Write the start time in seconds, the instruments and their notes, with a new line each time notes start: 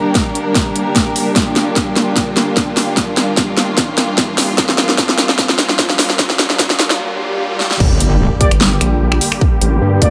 Already playing: string section G3 A#3 D4 A#4, ambient pad D4 G4 A#4 G5, riser
0.15 kick, snare, closed hi-hat
0.35 closed hi-hat
0.55 kick, snare, closed hi-hat
0.76 closed hi-hat
0.96 kick, snare, closed hi-hat
1.16 open hi-hat
1.36 string section F4, kick, snare, closed hi-hat
1.56 snare, closed hi-hat
1.76 kick, snare, closed hi-hat
1.96 snare, closed hi-hat
2.17 kick, snare, closed hi-hat
2.37 snare, closed hi-hat
2.57 kick, snare, closed hi-hat
2.77 snare, open hi-hat
2.97 kick, snare, closed hi-hat
3.17 snare, closed hi-hat
3.37 kick, snare, closed hi-hat
3.57 snare, closed hi-hat
3.78 kick, snare, closed hi-hat
3.98 snare, closed hi-hat
4.18 kick, snare, closed hi-hat
4.38 snare, open hi-hat
4.58 kick, snare, closed hi-hat
4.69 snare
4.78 snare, closed hi-hat
4.89 snare
4.98 kick, snare, closed hi-hat
5.09 snare
5.18 snare, closed hi-hat
5.29 snare
5.39 kick, snare, closed hi-hat
5.49 snare
5.59 snare, closed hi-hat
5.69 snare
5.79 kick, snare, closed hi-hat
5.90 snare
5.99 snare, open hi-hat
6.10 snare
6.19 kick, snare, closed hi-hat
6.30 snare
6.39 snare, closed hi-hat
6.50 snare
6.59 kick, snare, closed hi-hat
6.70 snare
6.80 snare, closed hi-hat
6.90 snare
7.00 swell
7.60 snare
7.71 snare
7.80 wobble bass G1, string section D3 G3 A#3 G4, kick, crash, impact
7.91 wobble bass G1
8.00 closed hi-hat
8.41 brass ensemble A#3 G4 D5, kick, closed hi-hat
8.51 wobble bass G1, finger snap, closed hi-hat
8.61 snare
8.81 wobble bass A#1, finger snap, closed hi-hat
9.12 finger snap
9.21 open hi-hat
9.32 finger snap
9.41 kick
9.61 wobble bass A1, closed hi-hat
9.82 wobble bass G2
10.02 wobble bass D2, brass ensemble A#3 G4 D5, kick, closed hi-hat